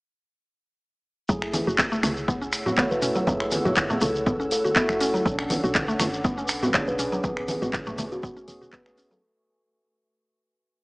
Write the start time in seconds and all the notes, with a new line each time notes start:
1.29 F#1 F#3 A3 E4 G#4 C#5 F#5 E6, kick, shekere
1.42 finger snap
1.53 E3, open hi-hat, muted conga, high conga, shekere
1.67 F#1 F#4, shekere
1.78 kick, clap, high conga, shekere
1.91 A3, muted conga, shekere
2.03 C#2 A3, finger snap, open hi-hat, high conga, shekere
2.17 shekere
2.28 B3, kick, muted conga, shekere
2.42 C#4, shekere
2.53 F#1, finger snap, open hi-hat, shekere
2.66 F#4, low conga, shekere
2.77 A3 B3 E4 F#4 C#5, kick, clap, muted conga, high conga, shekere
2.91 F#1 B4, shekere
3.02 C#4, open hi-hat, mid tom, shekere
3.15 F#3, muted conga, shekere
3.27 F#1 F#3 A3 E4 G#4, kick, low conga, shekere
3.40 finger snap
3.51 E3, open hi-hat, muted conga, high conga, shekere
3.65 F#1 F#4, low conga, shekere
3.76 kick, clap, high conga, shekere
3.90 A3, muted conga, low conga, shekere
4.01 C#2 A3 A4, open hi-hat, mid tom, high conga, shekere
4.15 shekere
4.26 B3, kick, muted conga, low conga, shekere
4.40 C#4, shekere
4.51 F#1 A4, open hi-hat, shekere
4.64 F#4 A4, high conga, shekere
4.76 A3 B3 E4 F#4, kick, clap, shekere
4.89 F#1, finger snap, shekere
5.00 C#4, open hi-hat, shekere
5.14 F#3, muted conga, shekere
5.25 B1 F#3 C#4 D4 A4 B4 D6, kick, shekere
5.39 finger snap
5.50 E3, open hi-hat, muted conga, high conga, shekere
5.64 B1 F#4, shekere
5.75 kick, clap, high conga, shekere
5.88 A3, muted conga, shekere
6.00 F#1 A3, finger snap, open hi-hat, high conga, shekere
6.13 shekere
6.24 B3, kick, muted conga, shekere
6.38 C#4, shekere
6.48 B1, finger snap, open hi-hat, shekere
6.63 F#4, low conga, shekere
6.74 B3 C#4 D4 G#4 C#5, kick, clap, muted conga, high conga, shekere
6.88 B1 B4, shekere
6.99 C#4, open hi-hat, mid tom, shekere
7.12 F#3, muted conga, shekere
7.24 A1 F#3 A3 B3 C#4 G#4 E5 G#5 C#6, kick, low conga, shekere
7.37 finger snap
7.48 E3, open hi-hat, muted conga, high conga, shekere
7.62 A1 F#4, low conga, shekere
7.73 kick, clap, high conga, shekere
7.86 A3, muted conga, low conga, shekere
7.98 E1 A3, open hi-hat, mid tom, high conga, shekere
8.12 F#4, shekere
8.22 B3, kick, muted conga, low conga, shekere
8.36 C#4, shekere
8.48 E1 B3 C#4 G#4, open hi-hat, shekere
8.61 F#4, mid tom, high conga, shekere
8.73 B3 B4, kick, clap, shekere
8.86 A1 B3 C#4 G#4 B4, finger snap, shekere
8.98 C#4, open hi-hat, shekere
9.10 F#3 A4, muted conga, shekere